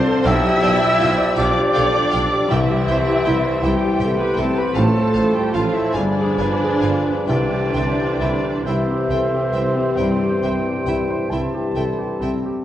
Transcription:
Already playing: grand piano C2 D4 F4 A4 B4 D5, french horn section F3 D4, bassoon F3, cello section C4, viola section C5, clarinet D5, cor anglais A5, violin section C6
0.08 grand piano A4
0.25 double bass section B1, grand piano B1, tuba B1, bassoon F3, french horn section F3 G4, cello section E4, clarinet D5, viola section E5, violin section F5 G5 E6, cor anglais G5, flute E6
0.44 grand piano G4
0.62 tuba B1, double bass section B1, grand piano D5, violin section F5 G5
0.81 grand piano G4
1.01 tuba B1, double bass section B1, grand piano F4, violin section F5 G5
1.18 grand piano D5
1.36 tuba B1, double bass section B1, french horn section F3 G4, bassoon F3, cello section D4, grand piano F4, viola section D5, clarinet D5, violin section F5 G5 D6, cor anglais G5, flute D6
1.59 grand piano G4
1.74 tuba B1, double bass section B1, grand piano A4, violin section F5 G5
1.96 grand piano G4
2.12 tuba B1, double bass section B1, grand piano D4, violin section F5 G5
2.33 grand piano G4
2.49 tuba C2, grand piano C2, double bass section C2, bassoon E3, french horn section E3 G4, cello section E3, viola section E4, cor anglais C5, flute E5, violin section E5 G5, clarinet G5
2.71 grand piano G4
2.88 tuba C2, double bass section C2, grand piano C5, violin section E5 G5
3.09 grand piano G4
3.25 tuba C2, double bass section C2, grand piano E4, violin section E5 G5
3.45 grand piano C5
3.62 tuba C2, double bass section C2, bassoon E3, french horn section E3 G4, cello section G3, grand piano E4, viola section G4, cor anglais C5, violin section E5 G5, clarinet G5, flute G5
3.84 grand piano G4
3.99 double bass section C2, tuba C2, violin section E5 G5
4.04 grand piano A4
4.18 cello section B3, grand piano G4, viola section B4, flute B5, violin section B5
4.36 tuba C2, double bass section C2, cello section A3, viola section A4, violin section E5 G5 A5, flute A5
4.41 grand piano C4
4.56 cello section B3, grand piano G4, viola section B4, violin section B5, flute B5
4.74 tuba A1, double bass section A1, grand piano A2, bassoon F3, french horn section F3 A4, cello section A3, viola section A4, cor anglais C5, violin section F5 A5, flute A5, clarinet A5
4.98 grand piano A4
5.14 double bass section A1, tuba A1, grand piano C5, violin section F5 A5
5.34 cello section G3, viola section G4, grand piano A4, violin section G5, flute G5
5.54 tuba A1, double bass section A1, cello section F3, viola section F4, grand piano F4, flute F5, violin section F5 A5
5.73 cello section E3, viola section E4, violin section E5, flute E5
5.77 grand piano C5
5.94 double bass section G1, tuba G1, cello section D3, french horn section F3 G#4, bassoon F3, viola section D4, cor anglais B4, flute D5, violin section D5 F5 G#5, clarinet G#5
5.98 grand piano G2
6.21 grand piano G#4
6.38 tuba G1, double bass section G1, grand piano B4, violin section F5 G#5
6.64 grand piano G#4
6.81 double bass section G1, tuba G1, grand piano F4, violin section F5 G#5
7.07 grand piano B4
7.26 tuba C2, double bass section C2, grand piano C2, cello section D3, french horn section E3 G4, bassoon E3, viola section D4, cor anglais C5, flute D5, violin section D5 E5 G5, clarinet G5
7.53 grand piano G4
7.73 tuba C2, double bass section C2, grand piano C5, violin section E5 G5
8.00 grand piano G4
8.19 tuba C2, double bass section C2, grand piano E4, violin section E5 G5
8.45 grand piano C5
8.64 double bass section C2, tuba C2, cello section C3, bassoon E3, french horn section E3 G4, viola section C4, flute C5, cor anglais C5, violin section C5 E5 G5, clarinet E5
8.69 grand piano E4
8.91 grand piano G4
9.08 tuba C2, double bass section C2, violin section E5 G5
9.13 grand piano A4
9.34 grand piano G4
9.52 tuba C2, double bass section C2, grand piano C4, violin section E5 G5
9.77 grand piano G4
9.96 tuba C2, double bass section C2, grand piano G2, violin section E5 G5, clarinet G5
10.23 grand piano G4
10.41 tuba C2, double bass section C2, grand piano C5, violin section E5 G5
10.68 grand piano G4
10.85 double bass section C2, tuba C2, grand piano E4, violin section E5 G5
11.10 grand piano C5
11.30 tuba C2, double bass section C2, grand piano E4, violin section E5 G5, clarinet A5
11.55 grand piano G4
11.74 tuba C2, double bass section C2, grand piano A4, violin section E5 G5
11.99 grand piano G4
12.20 double bass section C2, tuba C2, grand piano C4, violin section E5 G5
12.46 grand piano G4

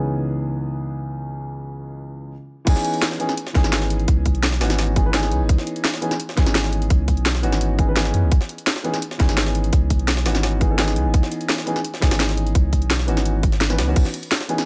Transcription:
Already playing: grand piano C#2 E3 B3 C#4 D#4 G#4
2.65 sub bass C#2, grand piano E3 B3 C#4 D#4 G#4, kick, closed hi-hat, crash
2.76 snare
2.85 closed hi-hat
2.94 closed hi-hat
3.02 snare, closed hi-hat, open hi-hat
3.11 snare
3.19 grand piano E3 B3 C#4 D#4 G#4, closed hi-hat
3.29 snare
3.37 closed hi-hat
3.47 snare
3.53 sub bass C#2, grand piano E3 B3 C#4 D#4 G#4, kick, snare, closed hi-hat
3.64 sub bass G#1, snare
3.73 snare, closed hi-hat
3.82 snare, closed hi-hat
3.90 closed hi-hat
4.00 closed hi-hat
4.08 sub bass C#2, kick, closed hi-hat
4.26 kick, closed hi-hat
4.35 sub bass B1, closed hi-hat
4.43 snare, closed hi-hat
4.52 snare
4.60 sub bass G#1, grand piano E3 B3 C#4 D#4 F#4, snare, closed hi-hat, open hi-hat
4.70 snare
4.78 snare, closed hi-hat, open hi-hat
4.95 grand piano E3 B3 C#4 D#4 G#4, kick, closed hi-hat
5.04 grand piano E3 B3 C#4 D#4 B4
5.12 grand piano E3 B3 C#4 D#4 G#4, snare, closed hi-hat
5.23 snare, closed hi-hat
5.32 sub bass C#2, closed hi-hat
5.41 sub bass G#1
5.49 sub bass C#2, kick, closed hi-hat
5.58 snare
5.67 closed hi-hat
5.76 closed hi-hat
5.84 snare, closed hi-hat, open hi-hat
5.94 snare
6.01 grand piano E3 B3 C#4 D#4 G#4, closed hi-hat
6.11 snare
6.20 closed hi-hat
6.29 snare
6.35 sub bass C#2, grand piano E3 B3 C#4 D#4 G#4, kick, snare, closed hi-hat
6.46 sub bass G#1, snare
6.55 snare, closed hi-hat
6.64 snare, closed hi-hat
6.73 closed hi-hat
6.82 closed hi-hat
6.90 sub bass C#2, kick, closed hi-hat
7.08 kick, closed hi-hat
7.17 sub bass B1, closed hi-hat
7.26 snare, closed hi-hat
7.35 snare
7.42 sub bass G#1, grand piano E3 B3 C#4 D#4 F#4, closed hi-hat
7.52 snare
7.61 closed hi-hat
7.78 grand piano E3 B3 C#4 D#4 G#4, kick, closed hi-hat
7.87 grand piano E3 B3 C#4 D#4 B4
7.95 grand piano E3 B3 C#4 D#4 G#4, snare, closed hi-hat
8.05 snare, closed hi-hat
8.14 sub bass F#2, closed hi-hat
8.23 sub bass C#2
8.32 sub bass C#2, kick, closed hi-hat
8.41 snare
8.49 closed hi-hat
8.58 closed hi-hat
8.67 snare, closed hi-hat, open hi-hat
8.76 snare
8.83 grand piano E3 B3 C#4 D#4 G#4, closed hi-hat
8.94 snare
9.02 closed hi-hat
9.11 snare
9.18 sub bass C#2, grand piano E3 B3 C#4 D#4 G#4, kick, snare, closed hi-hat
9.29 sub bass G#1, snare
9.37 snare, closed hi-hat
9.46 snare, closed hi-hat
9.55 closed hi-hat
9.64 closed hi-hat
9.73 sub bass C#2, kick, closed hi-hat
9.90 kick, closed hi-hat
9.99 sub bass B1, closed hi-hat
10.08 snare, closed hi-hat
10.17 snare
10.25 sub bass G#1, grand piano E3 B3 C#4 D#4 F#4, snare, closed hi-hat, open hi-hat
10.35 snare
10.43 snare, closed hi-hat, open hi-hat
10.60 grand piano E3 B3 C#4 D#4 G#4, kick, closed hi-hat
10.69 grand piano E3 B3 C#4 D#4 A4
10.77 grand piano E3 B3 C#4 D#4 G#4, snare, closed hi-hat
10.88 snare, closed hi-hat
10.96 sub bass C#2, closed hi-hat
11.05 sub bass G#1
11.14 sub bass C#2, kick, closed hi-hat
11.23 snare
11.32 closed hi-hat
11.41 closed hi-hat
11.49 snare, closed hi-hat, open hi-hat
11.58 snare
11.66 grand piano E3 B3 C#4 D#4 G#4, closed hi-hat
11.76 snare
11.84 closed hi-hat
11.94 snare
12.00 sub bass C#2, grand piano E3 B3 C#4 D#4 G#4, kick, snare, closed hi-hat, open hi-hat
12.11 sub bass G#1, snare, open hi-hat
12.20 snare, closed hi-hat
12.29 snare, closed hi-hat
12.37 closed hi-hat
12.47 closed hi-hat
12.55 sub bass C#2, kick, closed hi-hat
12.73 kick, closed hi-hat
12.82 sub bass B1, closed hi-hat
12.90 snare, closed hi-hat
12.99 snare
13.07 sub bass G#1, grand piano E3 B3 C#4 D#4 F#4, closed hi-hat
13.17 snare, closed hi-hat
13.26 closed hi-hat
13.43 kick, closed hi-hat
13.52 snare, closed hi-hat
13.61 snare, closed hi-hat
13.69 grand piano E3 B3 C#4 D#4 B4, snare, closed hi-hat
13.78 sub bass C#2, snare, closed hi-hat, open hi-hat
13.87 grand piano E3 B3 C#4 D#4 F#4
13.96 sub bass C#2, kick, closed hi-hat, crash
14.05 snare
14.14 closed hi-hat
14.23 closed hi-hat
14.31 snare, closed hi-hat, open hi-hat
14.41 snare
14.48 grand piano E3 B3 C#4 D#4 G#4, closed hi-hat
14.58 snare

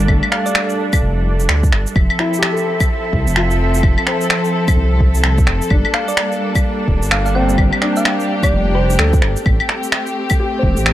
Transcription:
Already playing: string section G3 D4 A4, felt piano A#3 D4
0.08 detuned saw bass G1, felt piano A3, kick, claves
0.23 claves
0.32 synth pluck F5, finger snap
0.46 synth pluck D5, shaker
0.55 finger snap
0.70 shaker
0.93 kick, claves, shaker
1.02 detuned saw bass F1
1.40 shaker
1.49 detuned saw bass D2, finger snap
1.63 kick, shaker
1.72 detuned saw bass G1, finger snap
1.87 shaker
1.96 detuned saw bass F1, string section F3 C4 A4 E5, kick, claves
2.10 claves
2.19 felt piano E4, finger snap
2.34 shaker
2.39 felt piano G4, finger snap
2.53 felt piano A4
2.57 shaker
2.80 kick, claves, shaker
3.13 detuned saw bass C2, kick
3.27 detuned saw bass F1, shaker
3.36 felt piano F4, finger snap
3.51 shaker
3.74 shaker
3.83 detuned saw bass F1, kick, claves
3.98 claves
4.07 felt piano C4, finger snap
4.21 shaker
4.30 finger snap
4.45 shaker
4.68 kick, claves, shaker
4.76 detuned saw bass C2
5.00 kick
5.15 shaker
5.24 detuned saw bass C2, finger snap
5.38 kick, shaker
5.47 detuned saw bass F1, finger snap
5.62 shaker
5.70 detuned saw bass G1, string section G3 A#3 D4, felt piano D4, kick, claves
5.85 claves
5.94 synth pluck F5, finger snap
6.08 synth pluck D5, shaker
6.17 finger snap
6.32 shaker
6.55 kick, claves, shaker
6.88 detuned saw bass D1, kick
7.02 detuned saw bass G1, shaker
7.11 synth pluck F5, finger snap
7.26 synth pluck F5, shaker
7.35 felt piano C4, synth pluck G5
7.49 shaker
7.57 detuned saw bass G1, string section G4, kick, claves
7.73 claves
7.82 felt piano D4, finger snap
7.96 synth pluck F5, shaker
8.05 finger snap
8.20 shaker
8.43 synth pluck D5, kick, claves, shaker
8.52 detuned saw bass F1
8.75 synth pluck C5
8.90 shaker
8.99 detuned saw bass D2, felt piano A4, finger snap
9.13 kick, shaker
9.22 detuned saw bass G1, finger snap
9.36 shaker
9.46 detuned saw bass A1, string section A3 C4 G4, kick, claves
9.60 claves
9.69 finger snap
9.83 shaker
9.92 finger snap
10.07 shaker
10.30 kick, claves, shaker
10.40 felt piano G4
10.59 felt piano C5
10.63 detuned saw bass E1, kick
10.77 detuned saw bass A1, shaker
10.86 finger snap

